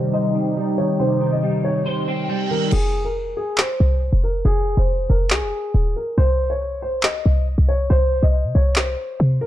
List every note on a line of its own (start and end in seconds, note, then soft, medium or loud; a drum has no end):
0.00 0.35 C3 medium
0.00 2.68 C3 medium
0.00 0.57 D#3 medium
0.00 0.55 G3 medium
0.00 2.69 G3 medium
0.00 2.69 D#4 loud
0.13 1.21 C5 medium
0.13 0.74 D#5 medium
0.35 1.43 C4 medium
0.57 1.42 G3 medium
0.78 1.20 D#3 medium
0.78 0.96 C#5 medium
1.00 2.08 C3 medium
1.00 1.30 C5 loud
1.21 2.29 D#3 medium
1.32 1.62 D#5 medium
1.43 2.28 G3 medium
1.64 1.82 C#5 medium
1.86 2.72 C5 medium
1.86 2.47 C5 medium
1.86 reverse cymbal medium
2.08 2.72 C4 medium
2.29 2.72 G3 loud
2.51 2.72 D#3 medium
2.51 2.69 A#4 medium
2.72 3.35 F1 loud
2.72 3.03 G#4 medium
2.72 crash loud
3.05 3.35 A#4 medium
3.37 3.55 G#4 medium
3.58 4.20 C5 medium
3.58 snare loud
3.58 clap loud
3.80 4.11 C2 loud
4.13 4.44 F1 loud
4.24 4.41 A#4 medium
4.45 4.76 F1 loud
4.45 4.75 G#4 loud
4.77 5.08 F1 loud
4.77 5.08 C5 medium
5.10 5.33 F1 loud
5.10 5.28 A#4 medium
5.31 5.44 C2 loud
5.31 5.92 G#4 medium
5.31 snare loud
5.31 clap loud
5.42 5.52 F1 loud
5.74 5.95 D#1 loud
5.96 6.14 A#4 medium
6.18 7.22 C2 loud
6.18 6.48 C5 loud
6.50 6.80 C#5 medium
6.82 7.00 C5 medium
7.03 7.65 D#5 medium
7.03 snare loud
7.03 clap loud
7.26 7.57 C2 loud
7.58 7.89 C2 loud
7.68 7.87 C#5 medium
7.90 8.21 C2 loud
7.90 8.21 C5 loud
8.23 8.46 C2 loud
8.23 8.53 D#5 medium
8.44 8.55 C3 loud
8.55 8.97 C2 loud
8.55 8.73 C#5 medium
8.76 9.37 C5 medium
8.76 snare loud
8.76 clap loud
9.20 9.41 C3 loud
9.41 9.47 A#4 medium